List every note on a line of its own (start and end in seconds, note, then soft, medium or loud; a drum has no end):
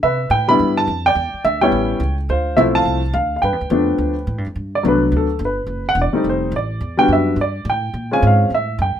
0.03 0.29 C3 medium
0.03 0.56 B4 medium
0.03 0.32 E5 medium
0.30 0.58 A2 medium
0.30 0.49 G5 medium
0.48 0.85 G3 medium
0.48 0.86 B3 medium
0.48 0.86 D4 medium
0.48 0.87 E4 medium
0.48 0.78 B5 loud
0.59 0.87 G2 medium
0.77 1.06 A5 medium
0.87 1.15 F2 medium
1.06 1.59 D5 medium
1.06 1.42 G5 loud
1.15 1.32 E2 medium
1.34 muted upright bass stroke soft
1.44 1.71 D2 medium
1.44 1.61 E5 medium
1.61 1.99 G3 medium
1.61 1.99 B3 medium
1.61 1.99 C#4 medium
1.61 2.00 E4 medium
1.61 2.15 C#5 medium
1.61 2.14 G5 medium
1.72 1.99 A1 medium
2.00 2.28 C#2 medium
2.29 2.57 D2 medium
2.29 2.83 F4 medium
2.29 2.59 C5 medium
2.56 2.85 B1 medium
2.56 2.99 F3 medium
2.56 2.99 A3 medium
2.56 3.00 C4 medium
2.56 3.00 E4 medium
2.56 2.62 E5 medium
2.75 3.12 F5 medium
2.75 3.15 A5 loud
2.85 3.13 C2 medium
3.13 3.41 D2 medium
3.13 3.35 F5 medium
3.36 3.42 F5 medium
3.42 3.52 G2 medium
3.42 4.41 B4 medium
3.42 4.40 G5 medium
3.52 3.60 F2 soft
3.61 3.69 D2 medium
3.70 3.98 F2 medium
3.70 4.13 F3 medium
3.70 4.13 A3 medium
3.70 4.13 B3 medium
3.70 4.13 D4 medium
3.98 4.26 D2 medium
4.27 4.38 A2 medium
4.38 4.46 G2 soft
4.46 4.55 F2 medium
4.55 4.83 G2 medium
4.75 4.85 D5 medium
4.83 5.11 C2 medium
4.83 5.25 F#3 medium
4.83 5.26 A3 medium
4.83 5.26 B3 medium
4.83 5.26 D4 medium
4.88 5.12 B4 medium
5.12 5.38 D2 medium
5.17 5.41 A4 medium
5.39 5.66 G1 medium
5.45 5.85 B4 medium
5.66 5.94 F#1 medium
5.89 5.98 F#5 medium
5.95 6.12 E1 medium
6.02 6.25 D5 medium
6.13 6.50 G3 medium
6.13 6.50 A3 medium
6.13 6.51 C4 medium
6.13 6.51 D#4 medium
6.13 muted upright bass stroke soft
6.24 6.51 F1 medium
6.29 6.53 C5 medium
6.52 6.80 A1 medium
6.56 6.97 D5 medium
6.81 7.08 E2 medium
6.97 7.35 G3 medium
6.97 7.35 B3 medium
6.97 7.36 D4 medium
6.97 7.36 F#4 medium
6.97 7.09 G5 medium
7.08 7.36 F#2 medium
7.13 7.37 E5 medium
7.36 7.64 G2 medium
7.41 7.66 D5 medium
7.65 7.93 A2 medium
7.70 8.10 G5 medium
7.94 8.21 A#2 medium
8.11 8.48 G#3 medium
8.11 8.49 C4 medium
8.11 8.49 C#4 medium
8.11 8.49 F4 medium
8.11 8.23 G#5 medium
8.22 8.50 G#2 medium
8.27 8.51 F5 medium
8.50 8.78 A2 medium
8.54 8.79 E5 medium
8.79 8.95 F#2 medium
8.79 9.00 G5 medium
8.96 muted upright bass stroke soft